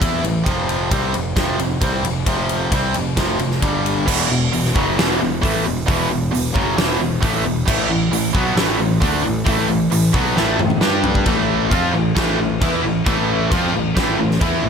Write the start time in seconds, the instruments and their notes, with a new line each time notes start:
0.01 picked electric bass E2, overdriven electric guitar E3 B3 E4, kick, ride
0.23 picked electric bass A1, overdriven electric guitar A2 E3, ride
0.46 picked electric bass F1, overdriven electric guitar F2 C3 F3, kick, ride
0.69 ride
0.91 picked electric bass C2, overdriven electric guitar C3 G3 C4, kick, ride
1.14 picked electric bass F1, overdriven electric guitar F2 C3, ride
1.37 picked electric bass F1, overdriven electric guitar F2 C3 F3, kick, snare, ride
1.58 picked electric bass F1, overdriven electric guitar F2 C3, ride
1.81 picked electric bass C2, overdriven electric guitar C3 G3 C4, kick, ride
2.03 picked electric bass F1, overdriven electric guitar F2 C3, ride
2.26 picked electric bass F1, overdriven electric guitar F2 C3 F3, kick, ride
2.49 ride
2.71 picked electric bass C2, overdriven electric guitar C3 G3 C4, kick, ride
2.94 picked electric bass F1, overdriven electric guitar F2 C3, ride
3.17 picked electric bass F1, overdriven electric guitar F2 C3 F3, kick, snare, ride
3.39 picked electric bass F1, overdriven electric guitar F2 C3, ride
3.51 snare
3.62 picked electric bass G1, overdriven electric guitar G2 D3 G3, kick, ride
3.86 ride
4.07 picked electric bass E1, overdriven electric guitar E2 B2 E3, kick, crash
4.29 picked electric bass E1, overdriven electric guitar E2 B2
4.52 picked electric bass E1, overdriven electric guitar E2 B2, open hi-hat
4.65 snare
4.74 picked electric bass F#1, overdriven electric guitar F#2 C#3 F#3, kick
4.98 picked electric bass E1, overdriven electric guitar E2 B2 E3, snare, open hi-hat
5.20 picked electric bass E1, overdriven electric guitar E2 B2
5.41 picked electric bass A1, overdriven electric guitar A2 E3 A3, kick, open hi-hat
5.64 picked electric bass E1, overdriven electric guitar E2 B2
5.86 picked electric bass E1, overdriven electric guitar E2 B2 E3, kick, open hi-hat
6.10 picked electric bass E1, overdriven electric guitar E2 B2
6.32 picked electric bass E1, overdriven electric guitar E2 B2, open hi-hat
6.53 picked electric bass F#1, overdriven electric guitar F#2 C#3 F#3, kick
6.76 picked electric bass E1, overdriven electric guitar E2 B2 E3, snare, open hi-hat
6.99 picked electric bass E1, overdriven electric guitar E2 B2
7.21 picked electric bass A1, overdriven electric guitar A2 E3 A3, kick, open hi-hat
7.45 picked electric bass E1, overdriven electric guitar E2 B2
7.67 picked electric bass A1, overdriven electric guitar A2 E3 A3, kick, crash
7.89 picked electric bass A1, overdriven electric guitar A2 E3
8.11 picked electric bass A1, overdriven electric guitar A2 E3, open hi-hat
8.33 picked electric bass B1, overdriven electric guitar B2 F#3 B3, kick
8.55 picked electric bass A1, overdriven electric guitar A2 E3 A3, snare, open hi-hat
8.79 picked electric bass A1, overdriven electric guitar A2 E3
9.01 picked electric bass D2, overdriven electric guitar D3 A3 D4, kick, open hi-hat
9.23 picked electric bass A1, overdriven electric guitar A2 E3
9.46 picked electric bass A1, overdriven electric guitar A2 E3 A3, kick, open hi-hat
9.68 picked electric bass A1, overdriven electric guitar A2 E3
9.91 picked electric bass A1, overdriven electric guitar A2 E3, open hi-hat
10.13 picked electric bass B1, overdriven electric guitar B2 F#3 B3, kick
10.36 picked electric bass A1, overdriven electric guitar A2 E3 A3, snare
10.58 picked electric bass A1, overdriven electric guitar A2 E3, mid tom
10.70 mid tom
10.81 picked electric bass G2, overdriven electric guitar G3 D4 G4, snare
11.04 floor tom
11.15 kick
11.26 picked electric bass A1, overdriven electric guitar A2 E3 A3, kick, crash
11.71 picked electric bass F2, overdriven electric guitar F3 C4 F4, kick, crash
11.94 picked electric bass A1, overdriven electric guitar A2 E3
12.16 picked electric bass A1, overdriven electric guitar A2 E3 A3, kick, snare, crash
12.39 picked electric bass A1, overdriven electric guitar A2 E3
12.60 picked electric bass E2, overdriven electric guitar E3 B3 E4, kick, crash
12.83 picked electric bass A1, overdriven electric guitar A2 E3
13.06 picked electric bass A1, overdriven electric guitar A2 E3 A3, kick, crash
13.52 picked electric bass F2, overdriven electric guitar F3 C4 F4, kick, crash
13.72 picked electric bass A1, overdriven electric guitar A2 E3
13.97 picked electric bass A1, overdriven electric guitar A2 E3 A3, kick, snare, crash
14.18 picked electric bass A1, overdriven electric guitar A2 E3
14.31 snare
14.41 picked electric bass E2, overdriven electric guitar E3 B3 E4, kick, crash
14.63 picked electric bass A1, overdriven electric guitar A2 E3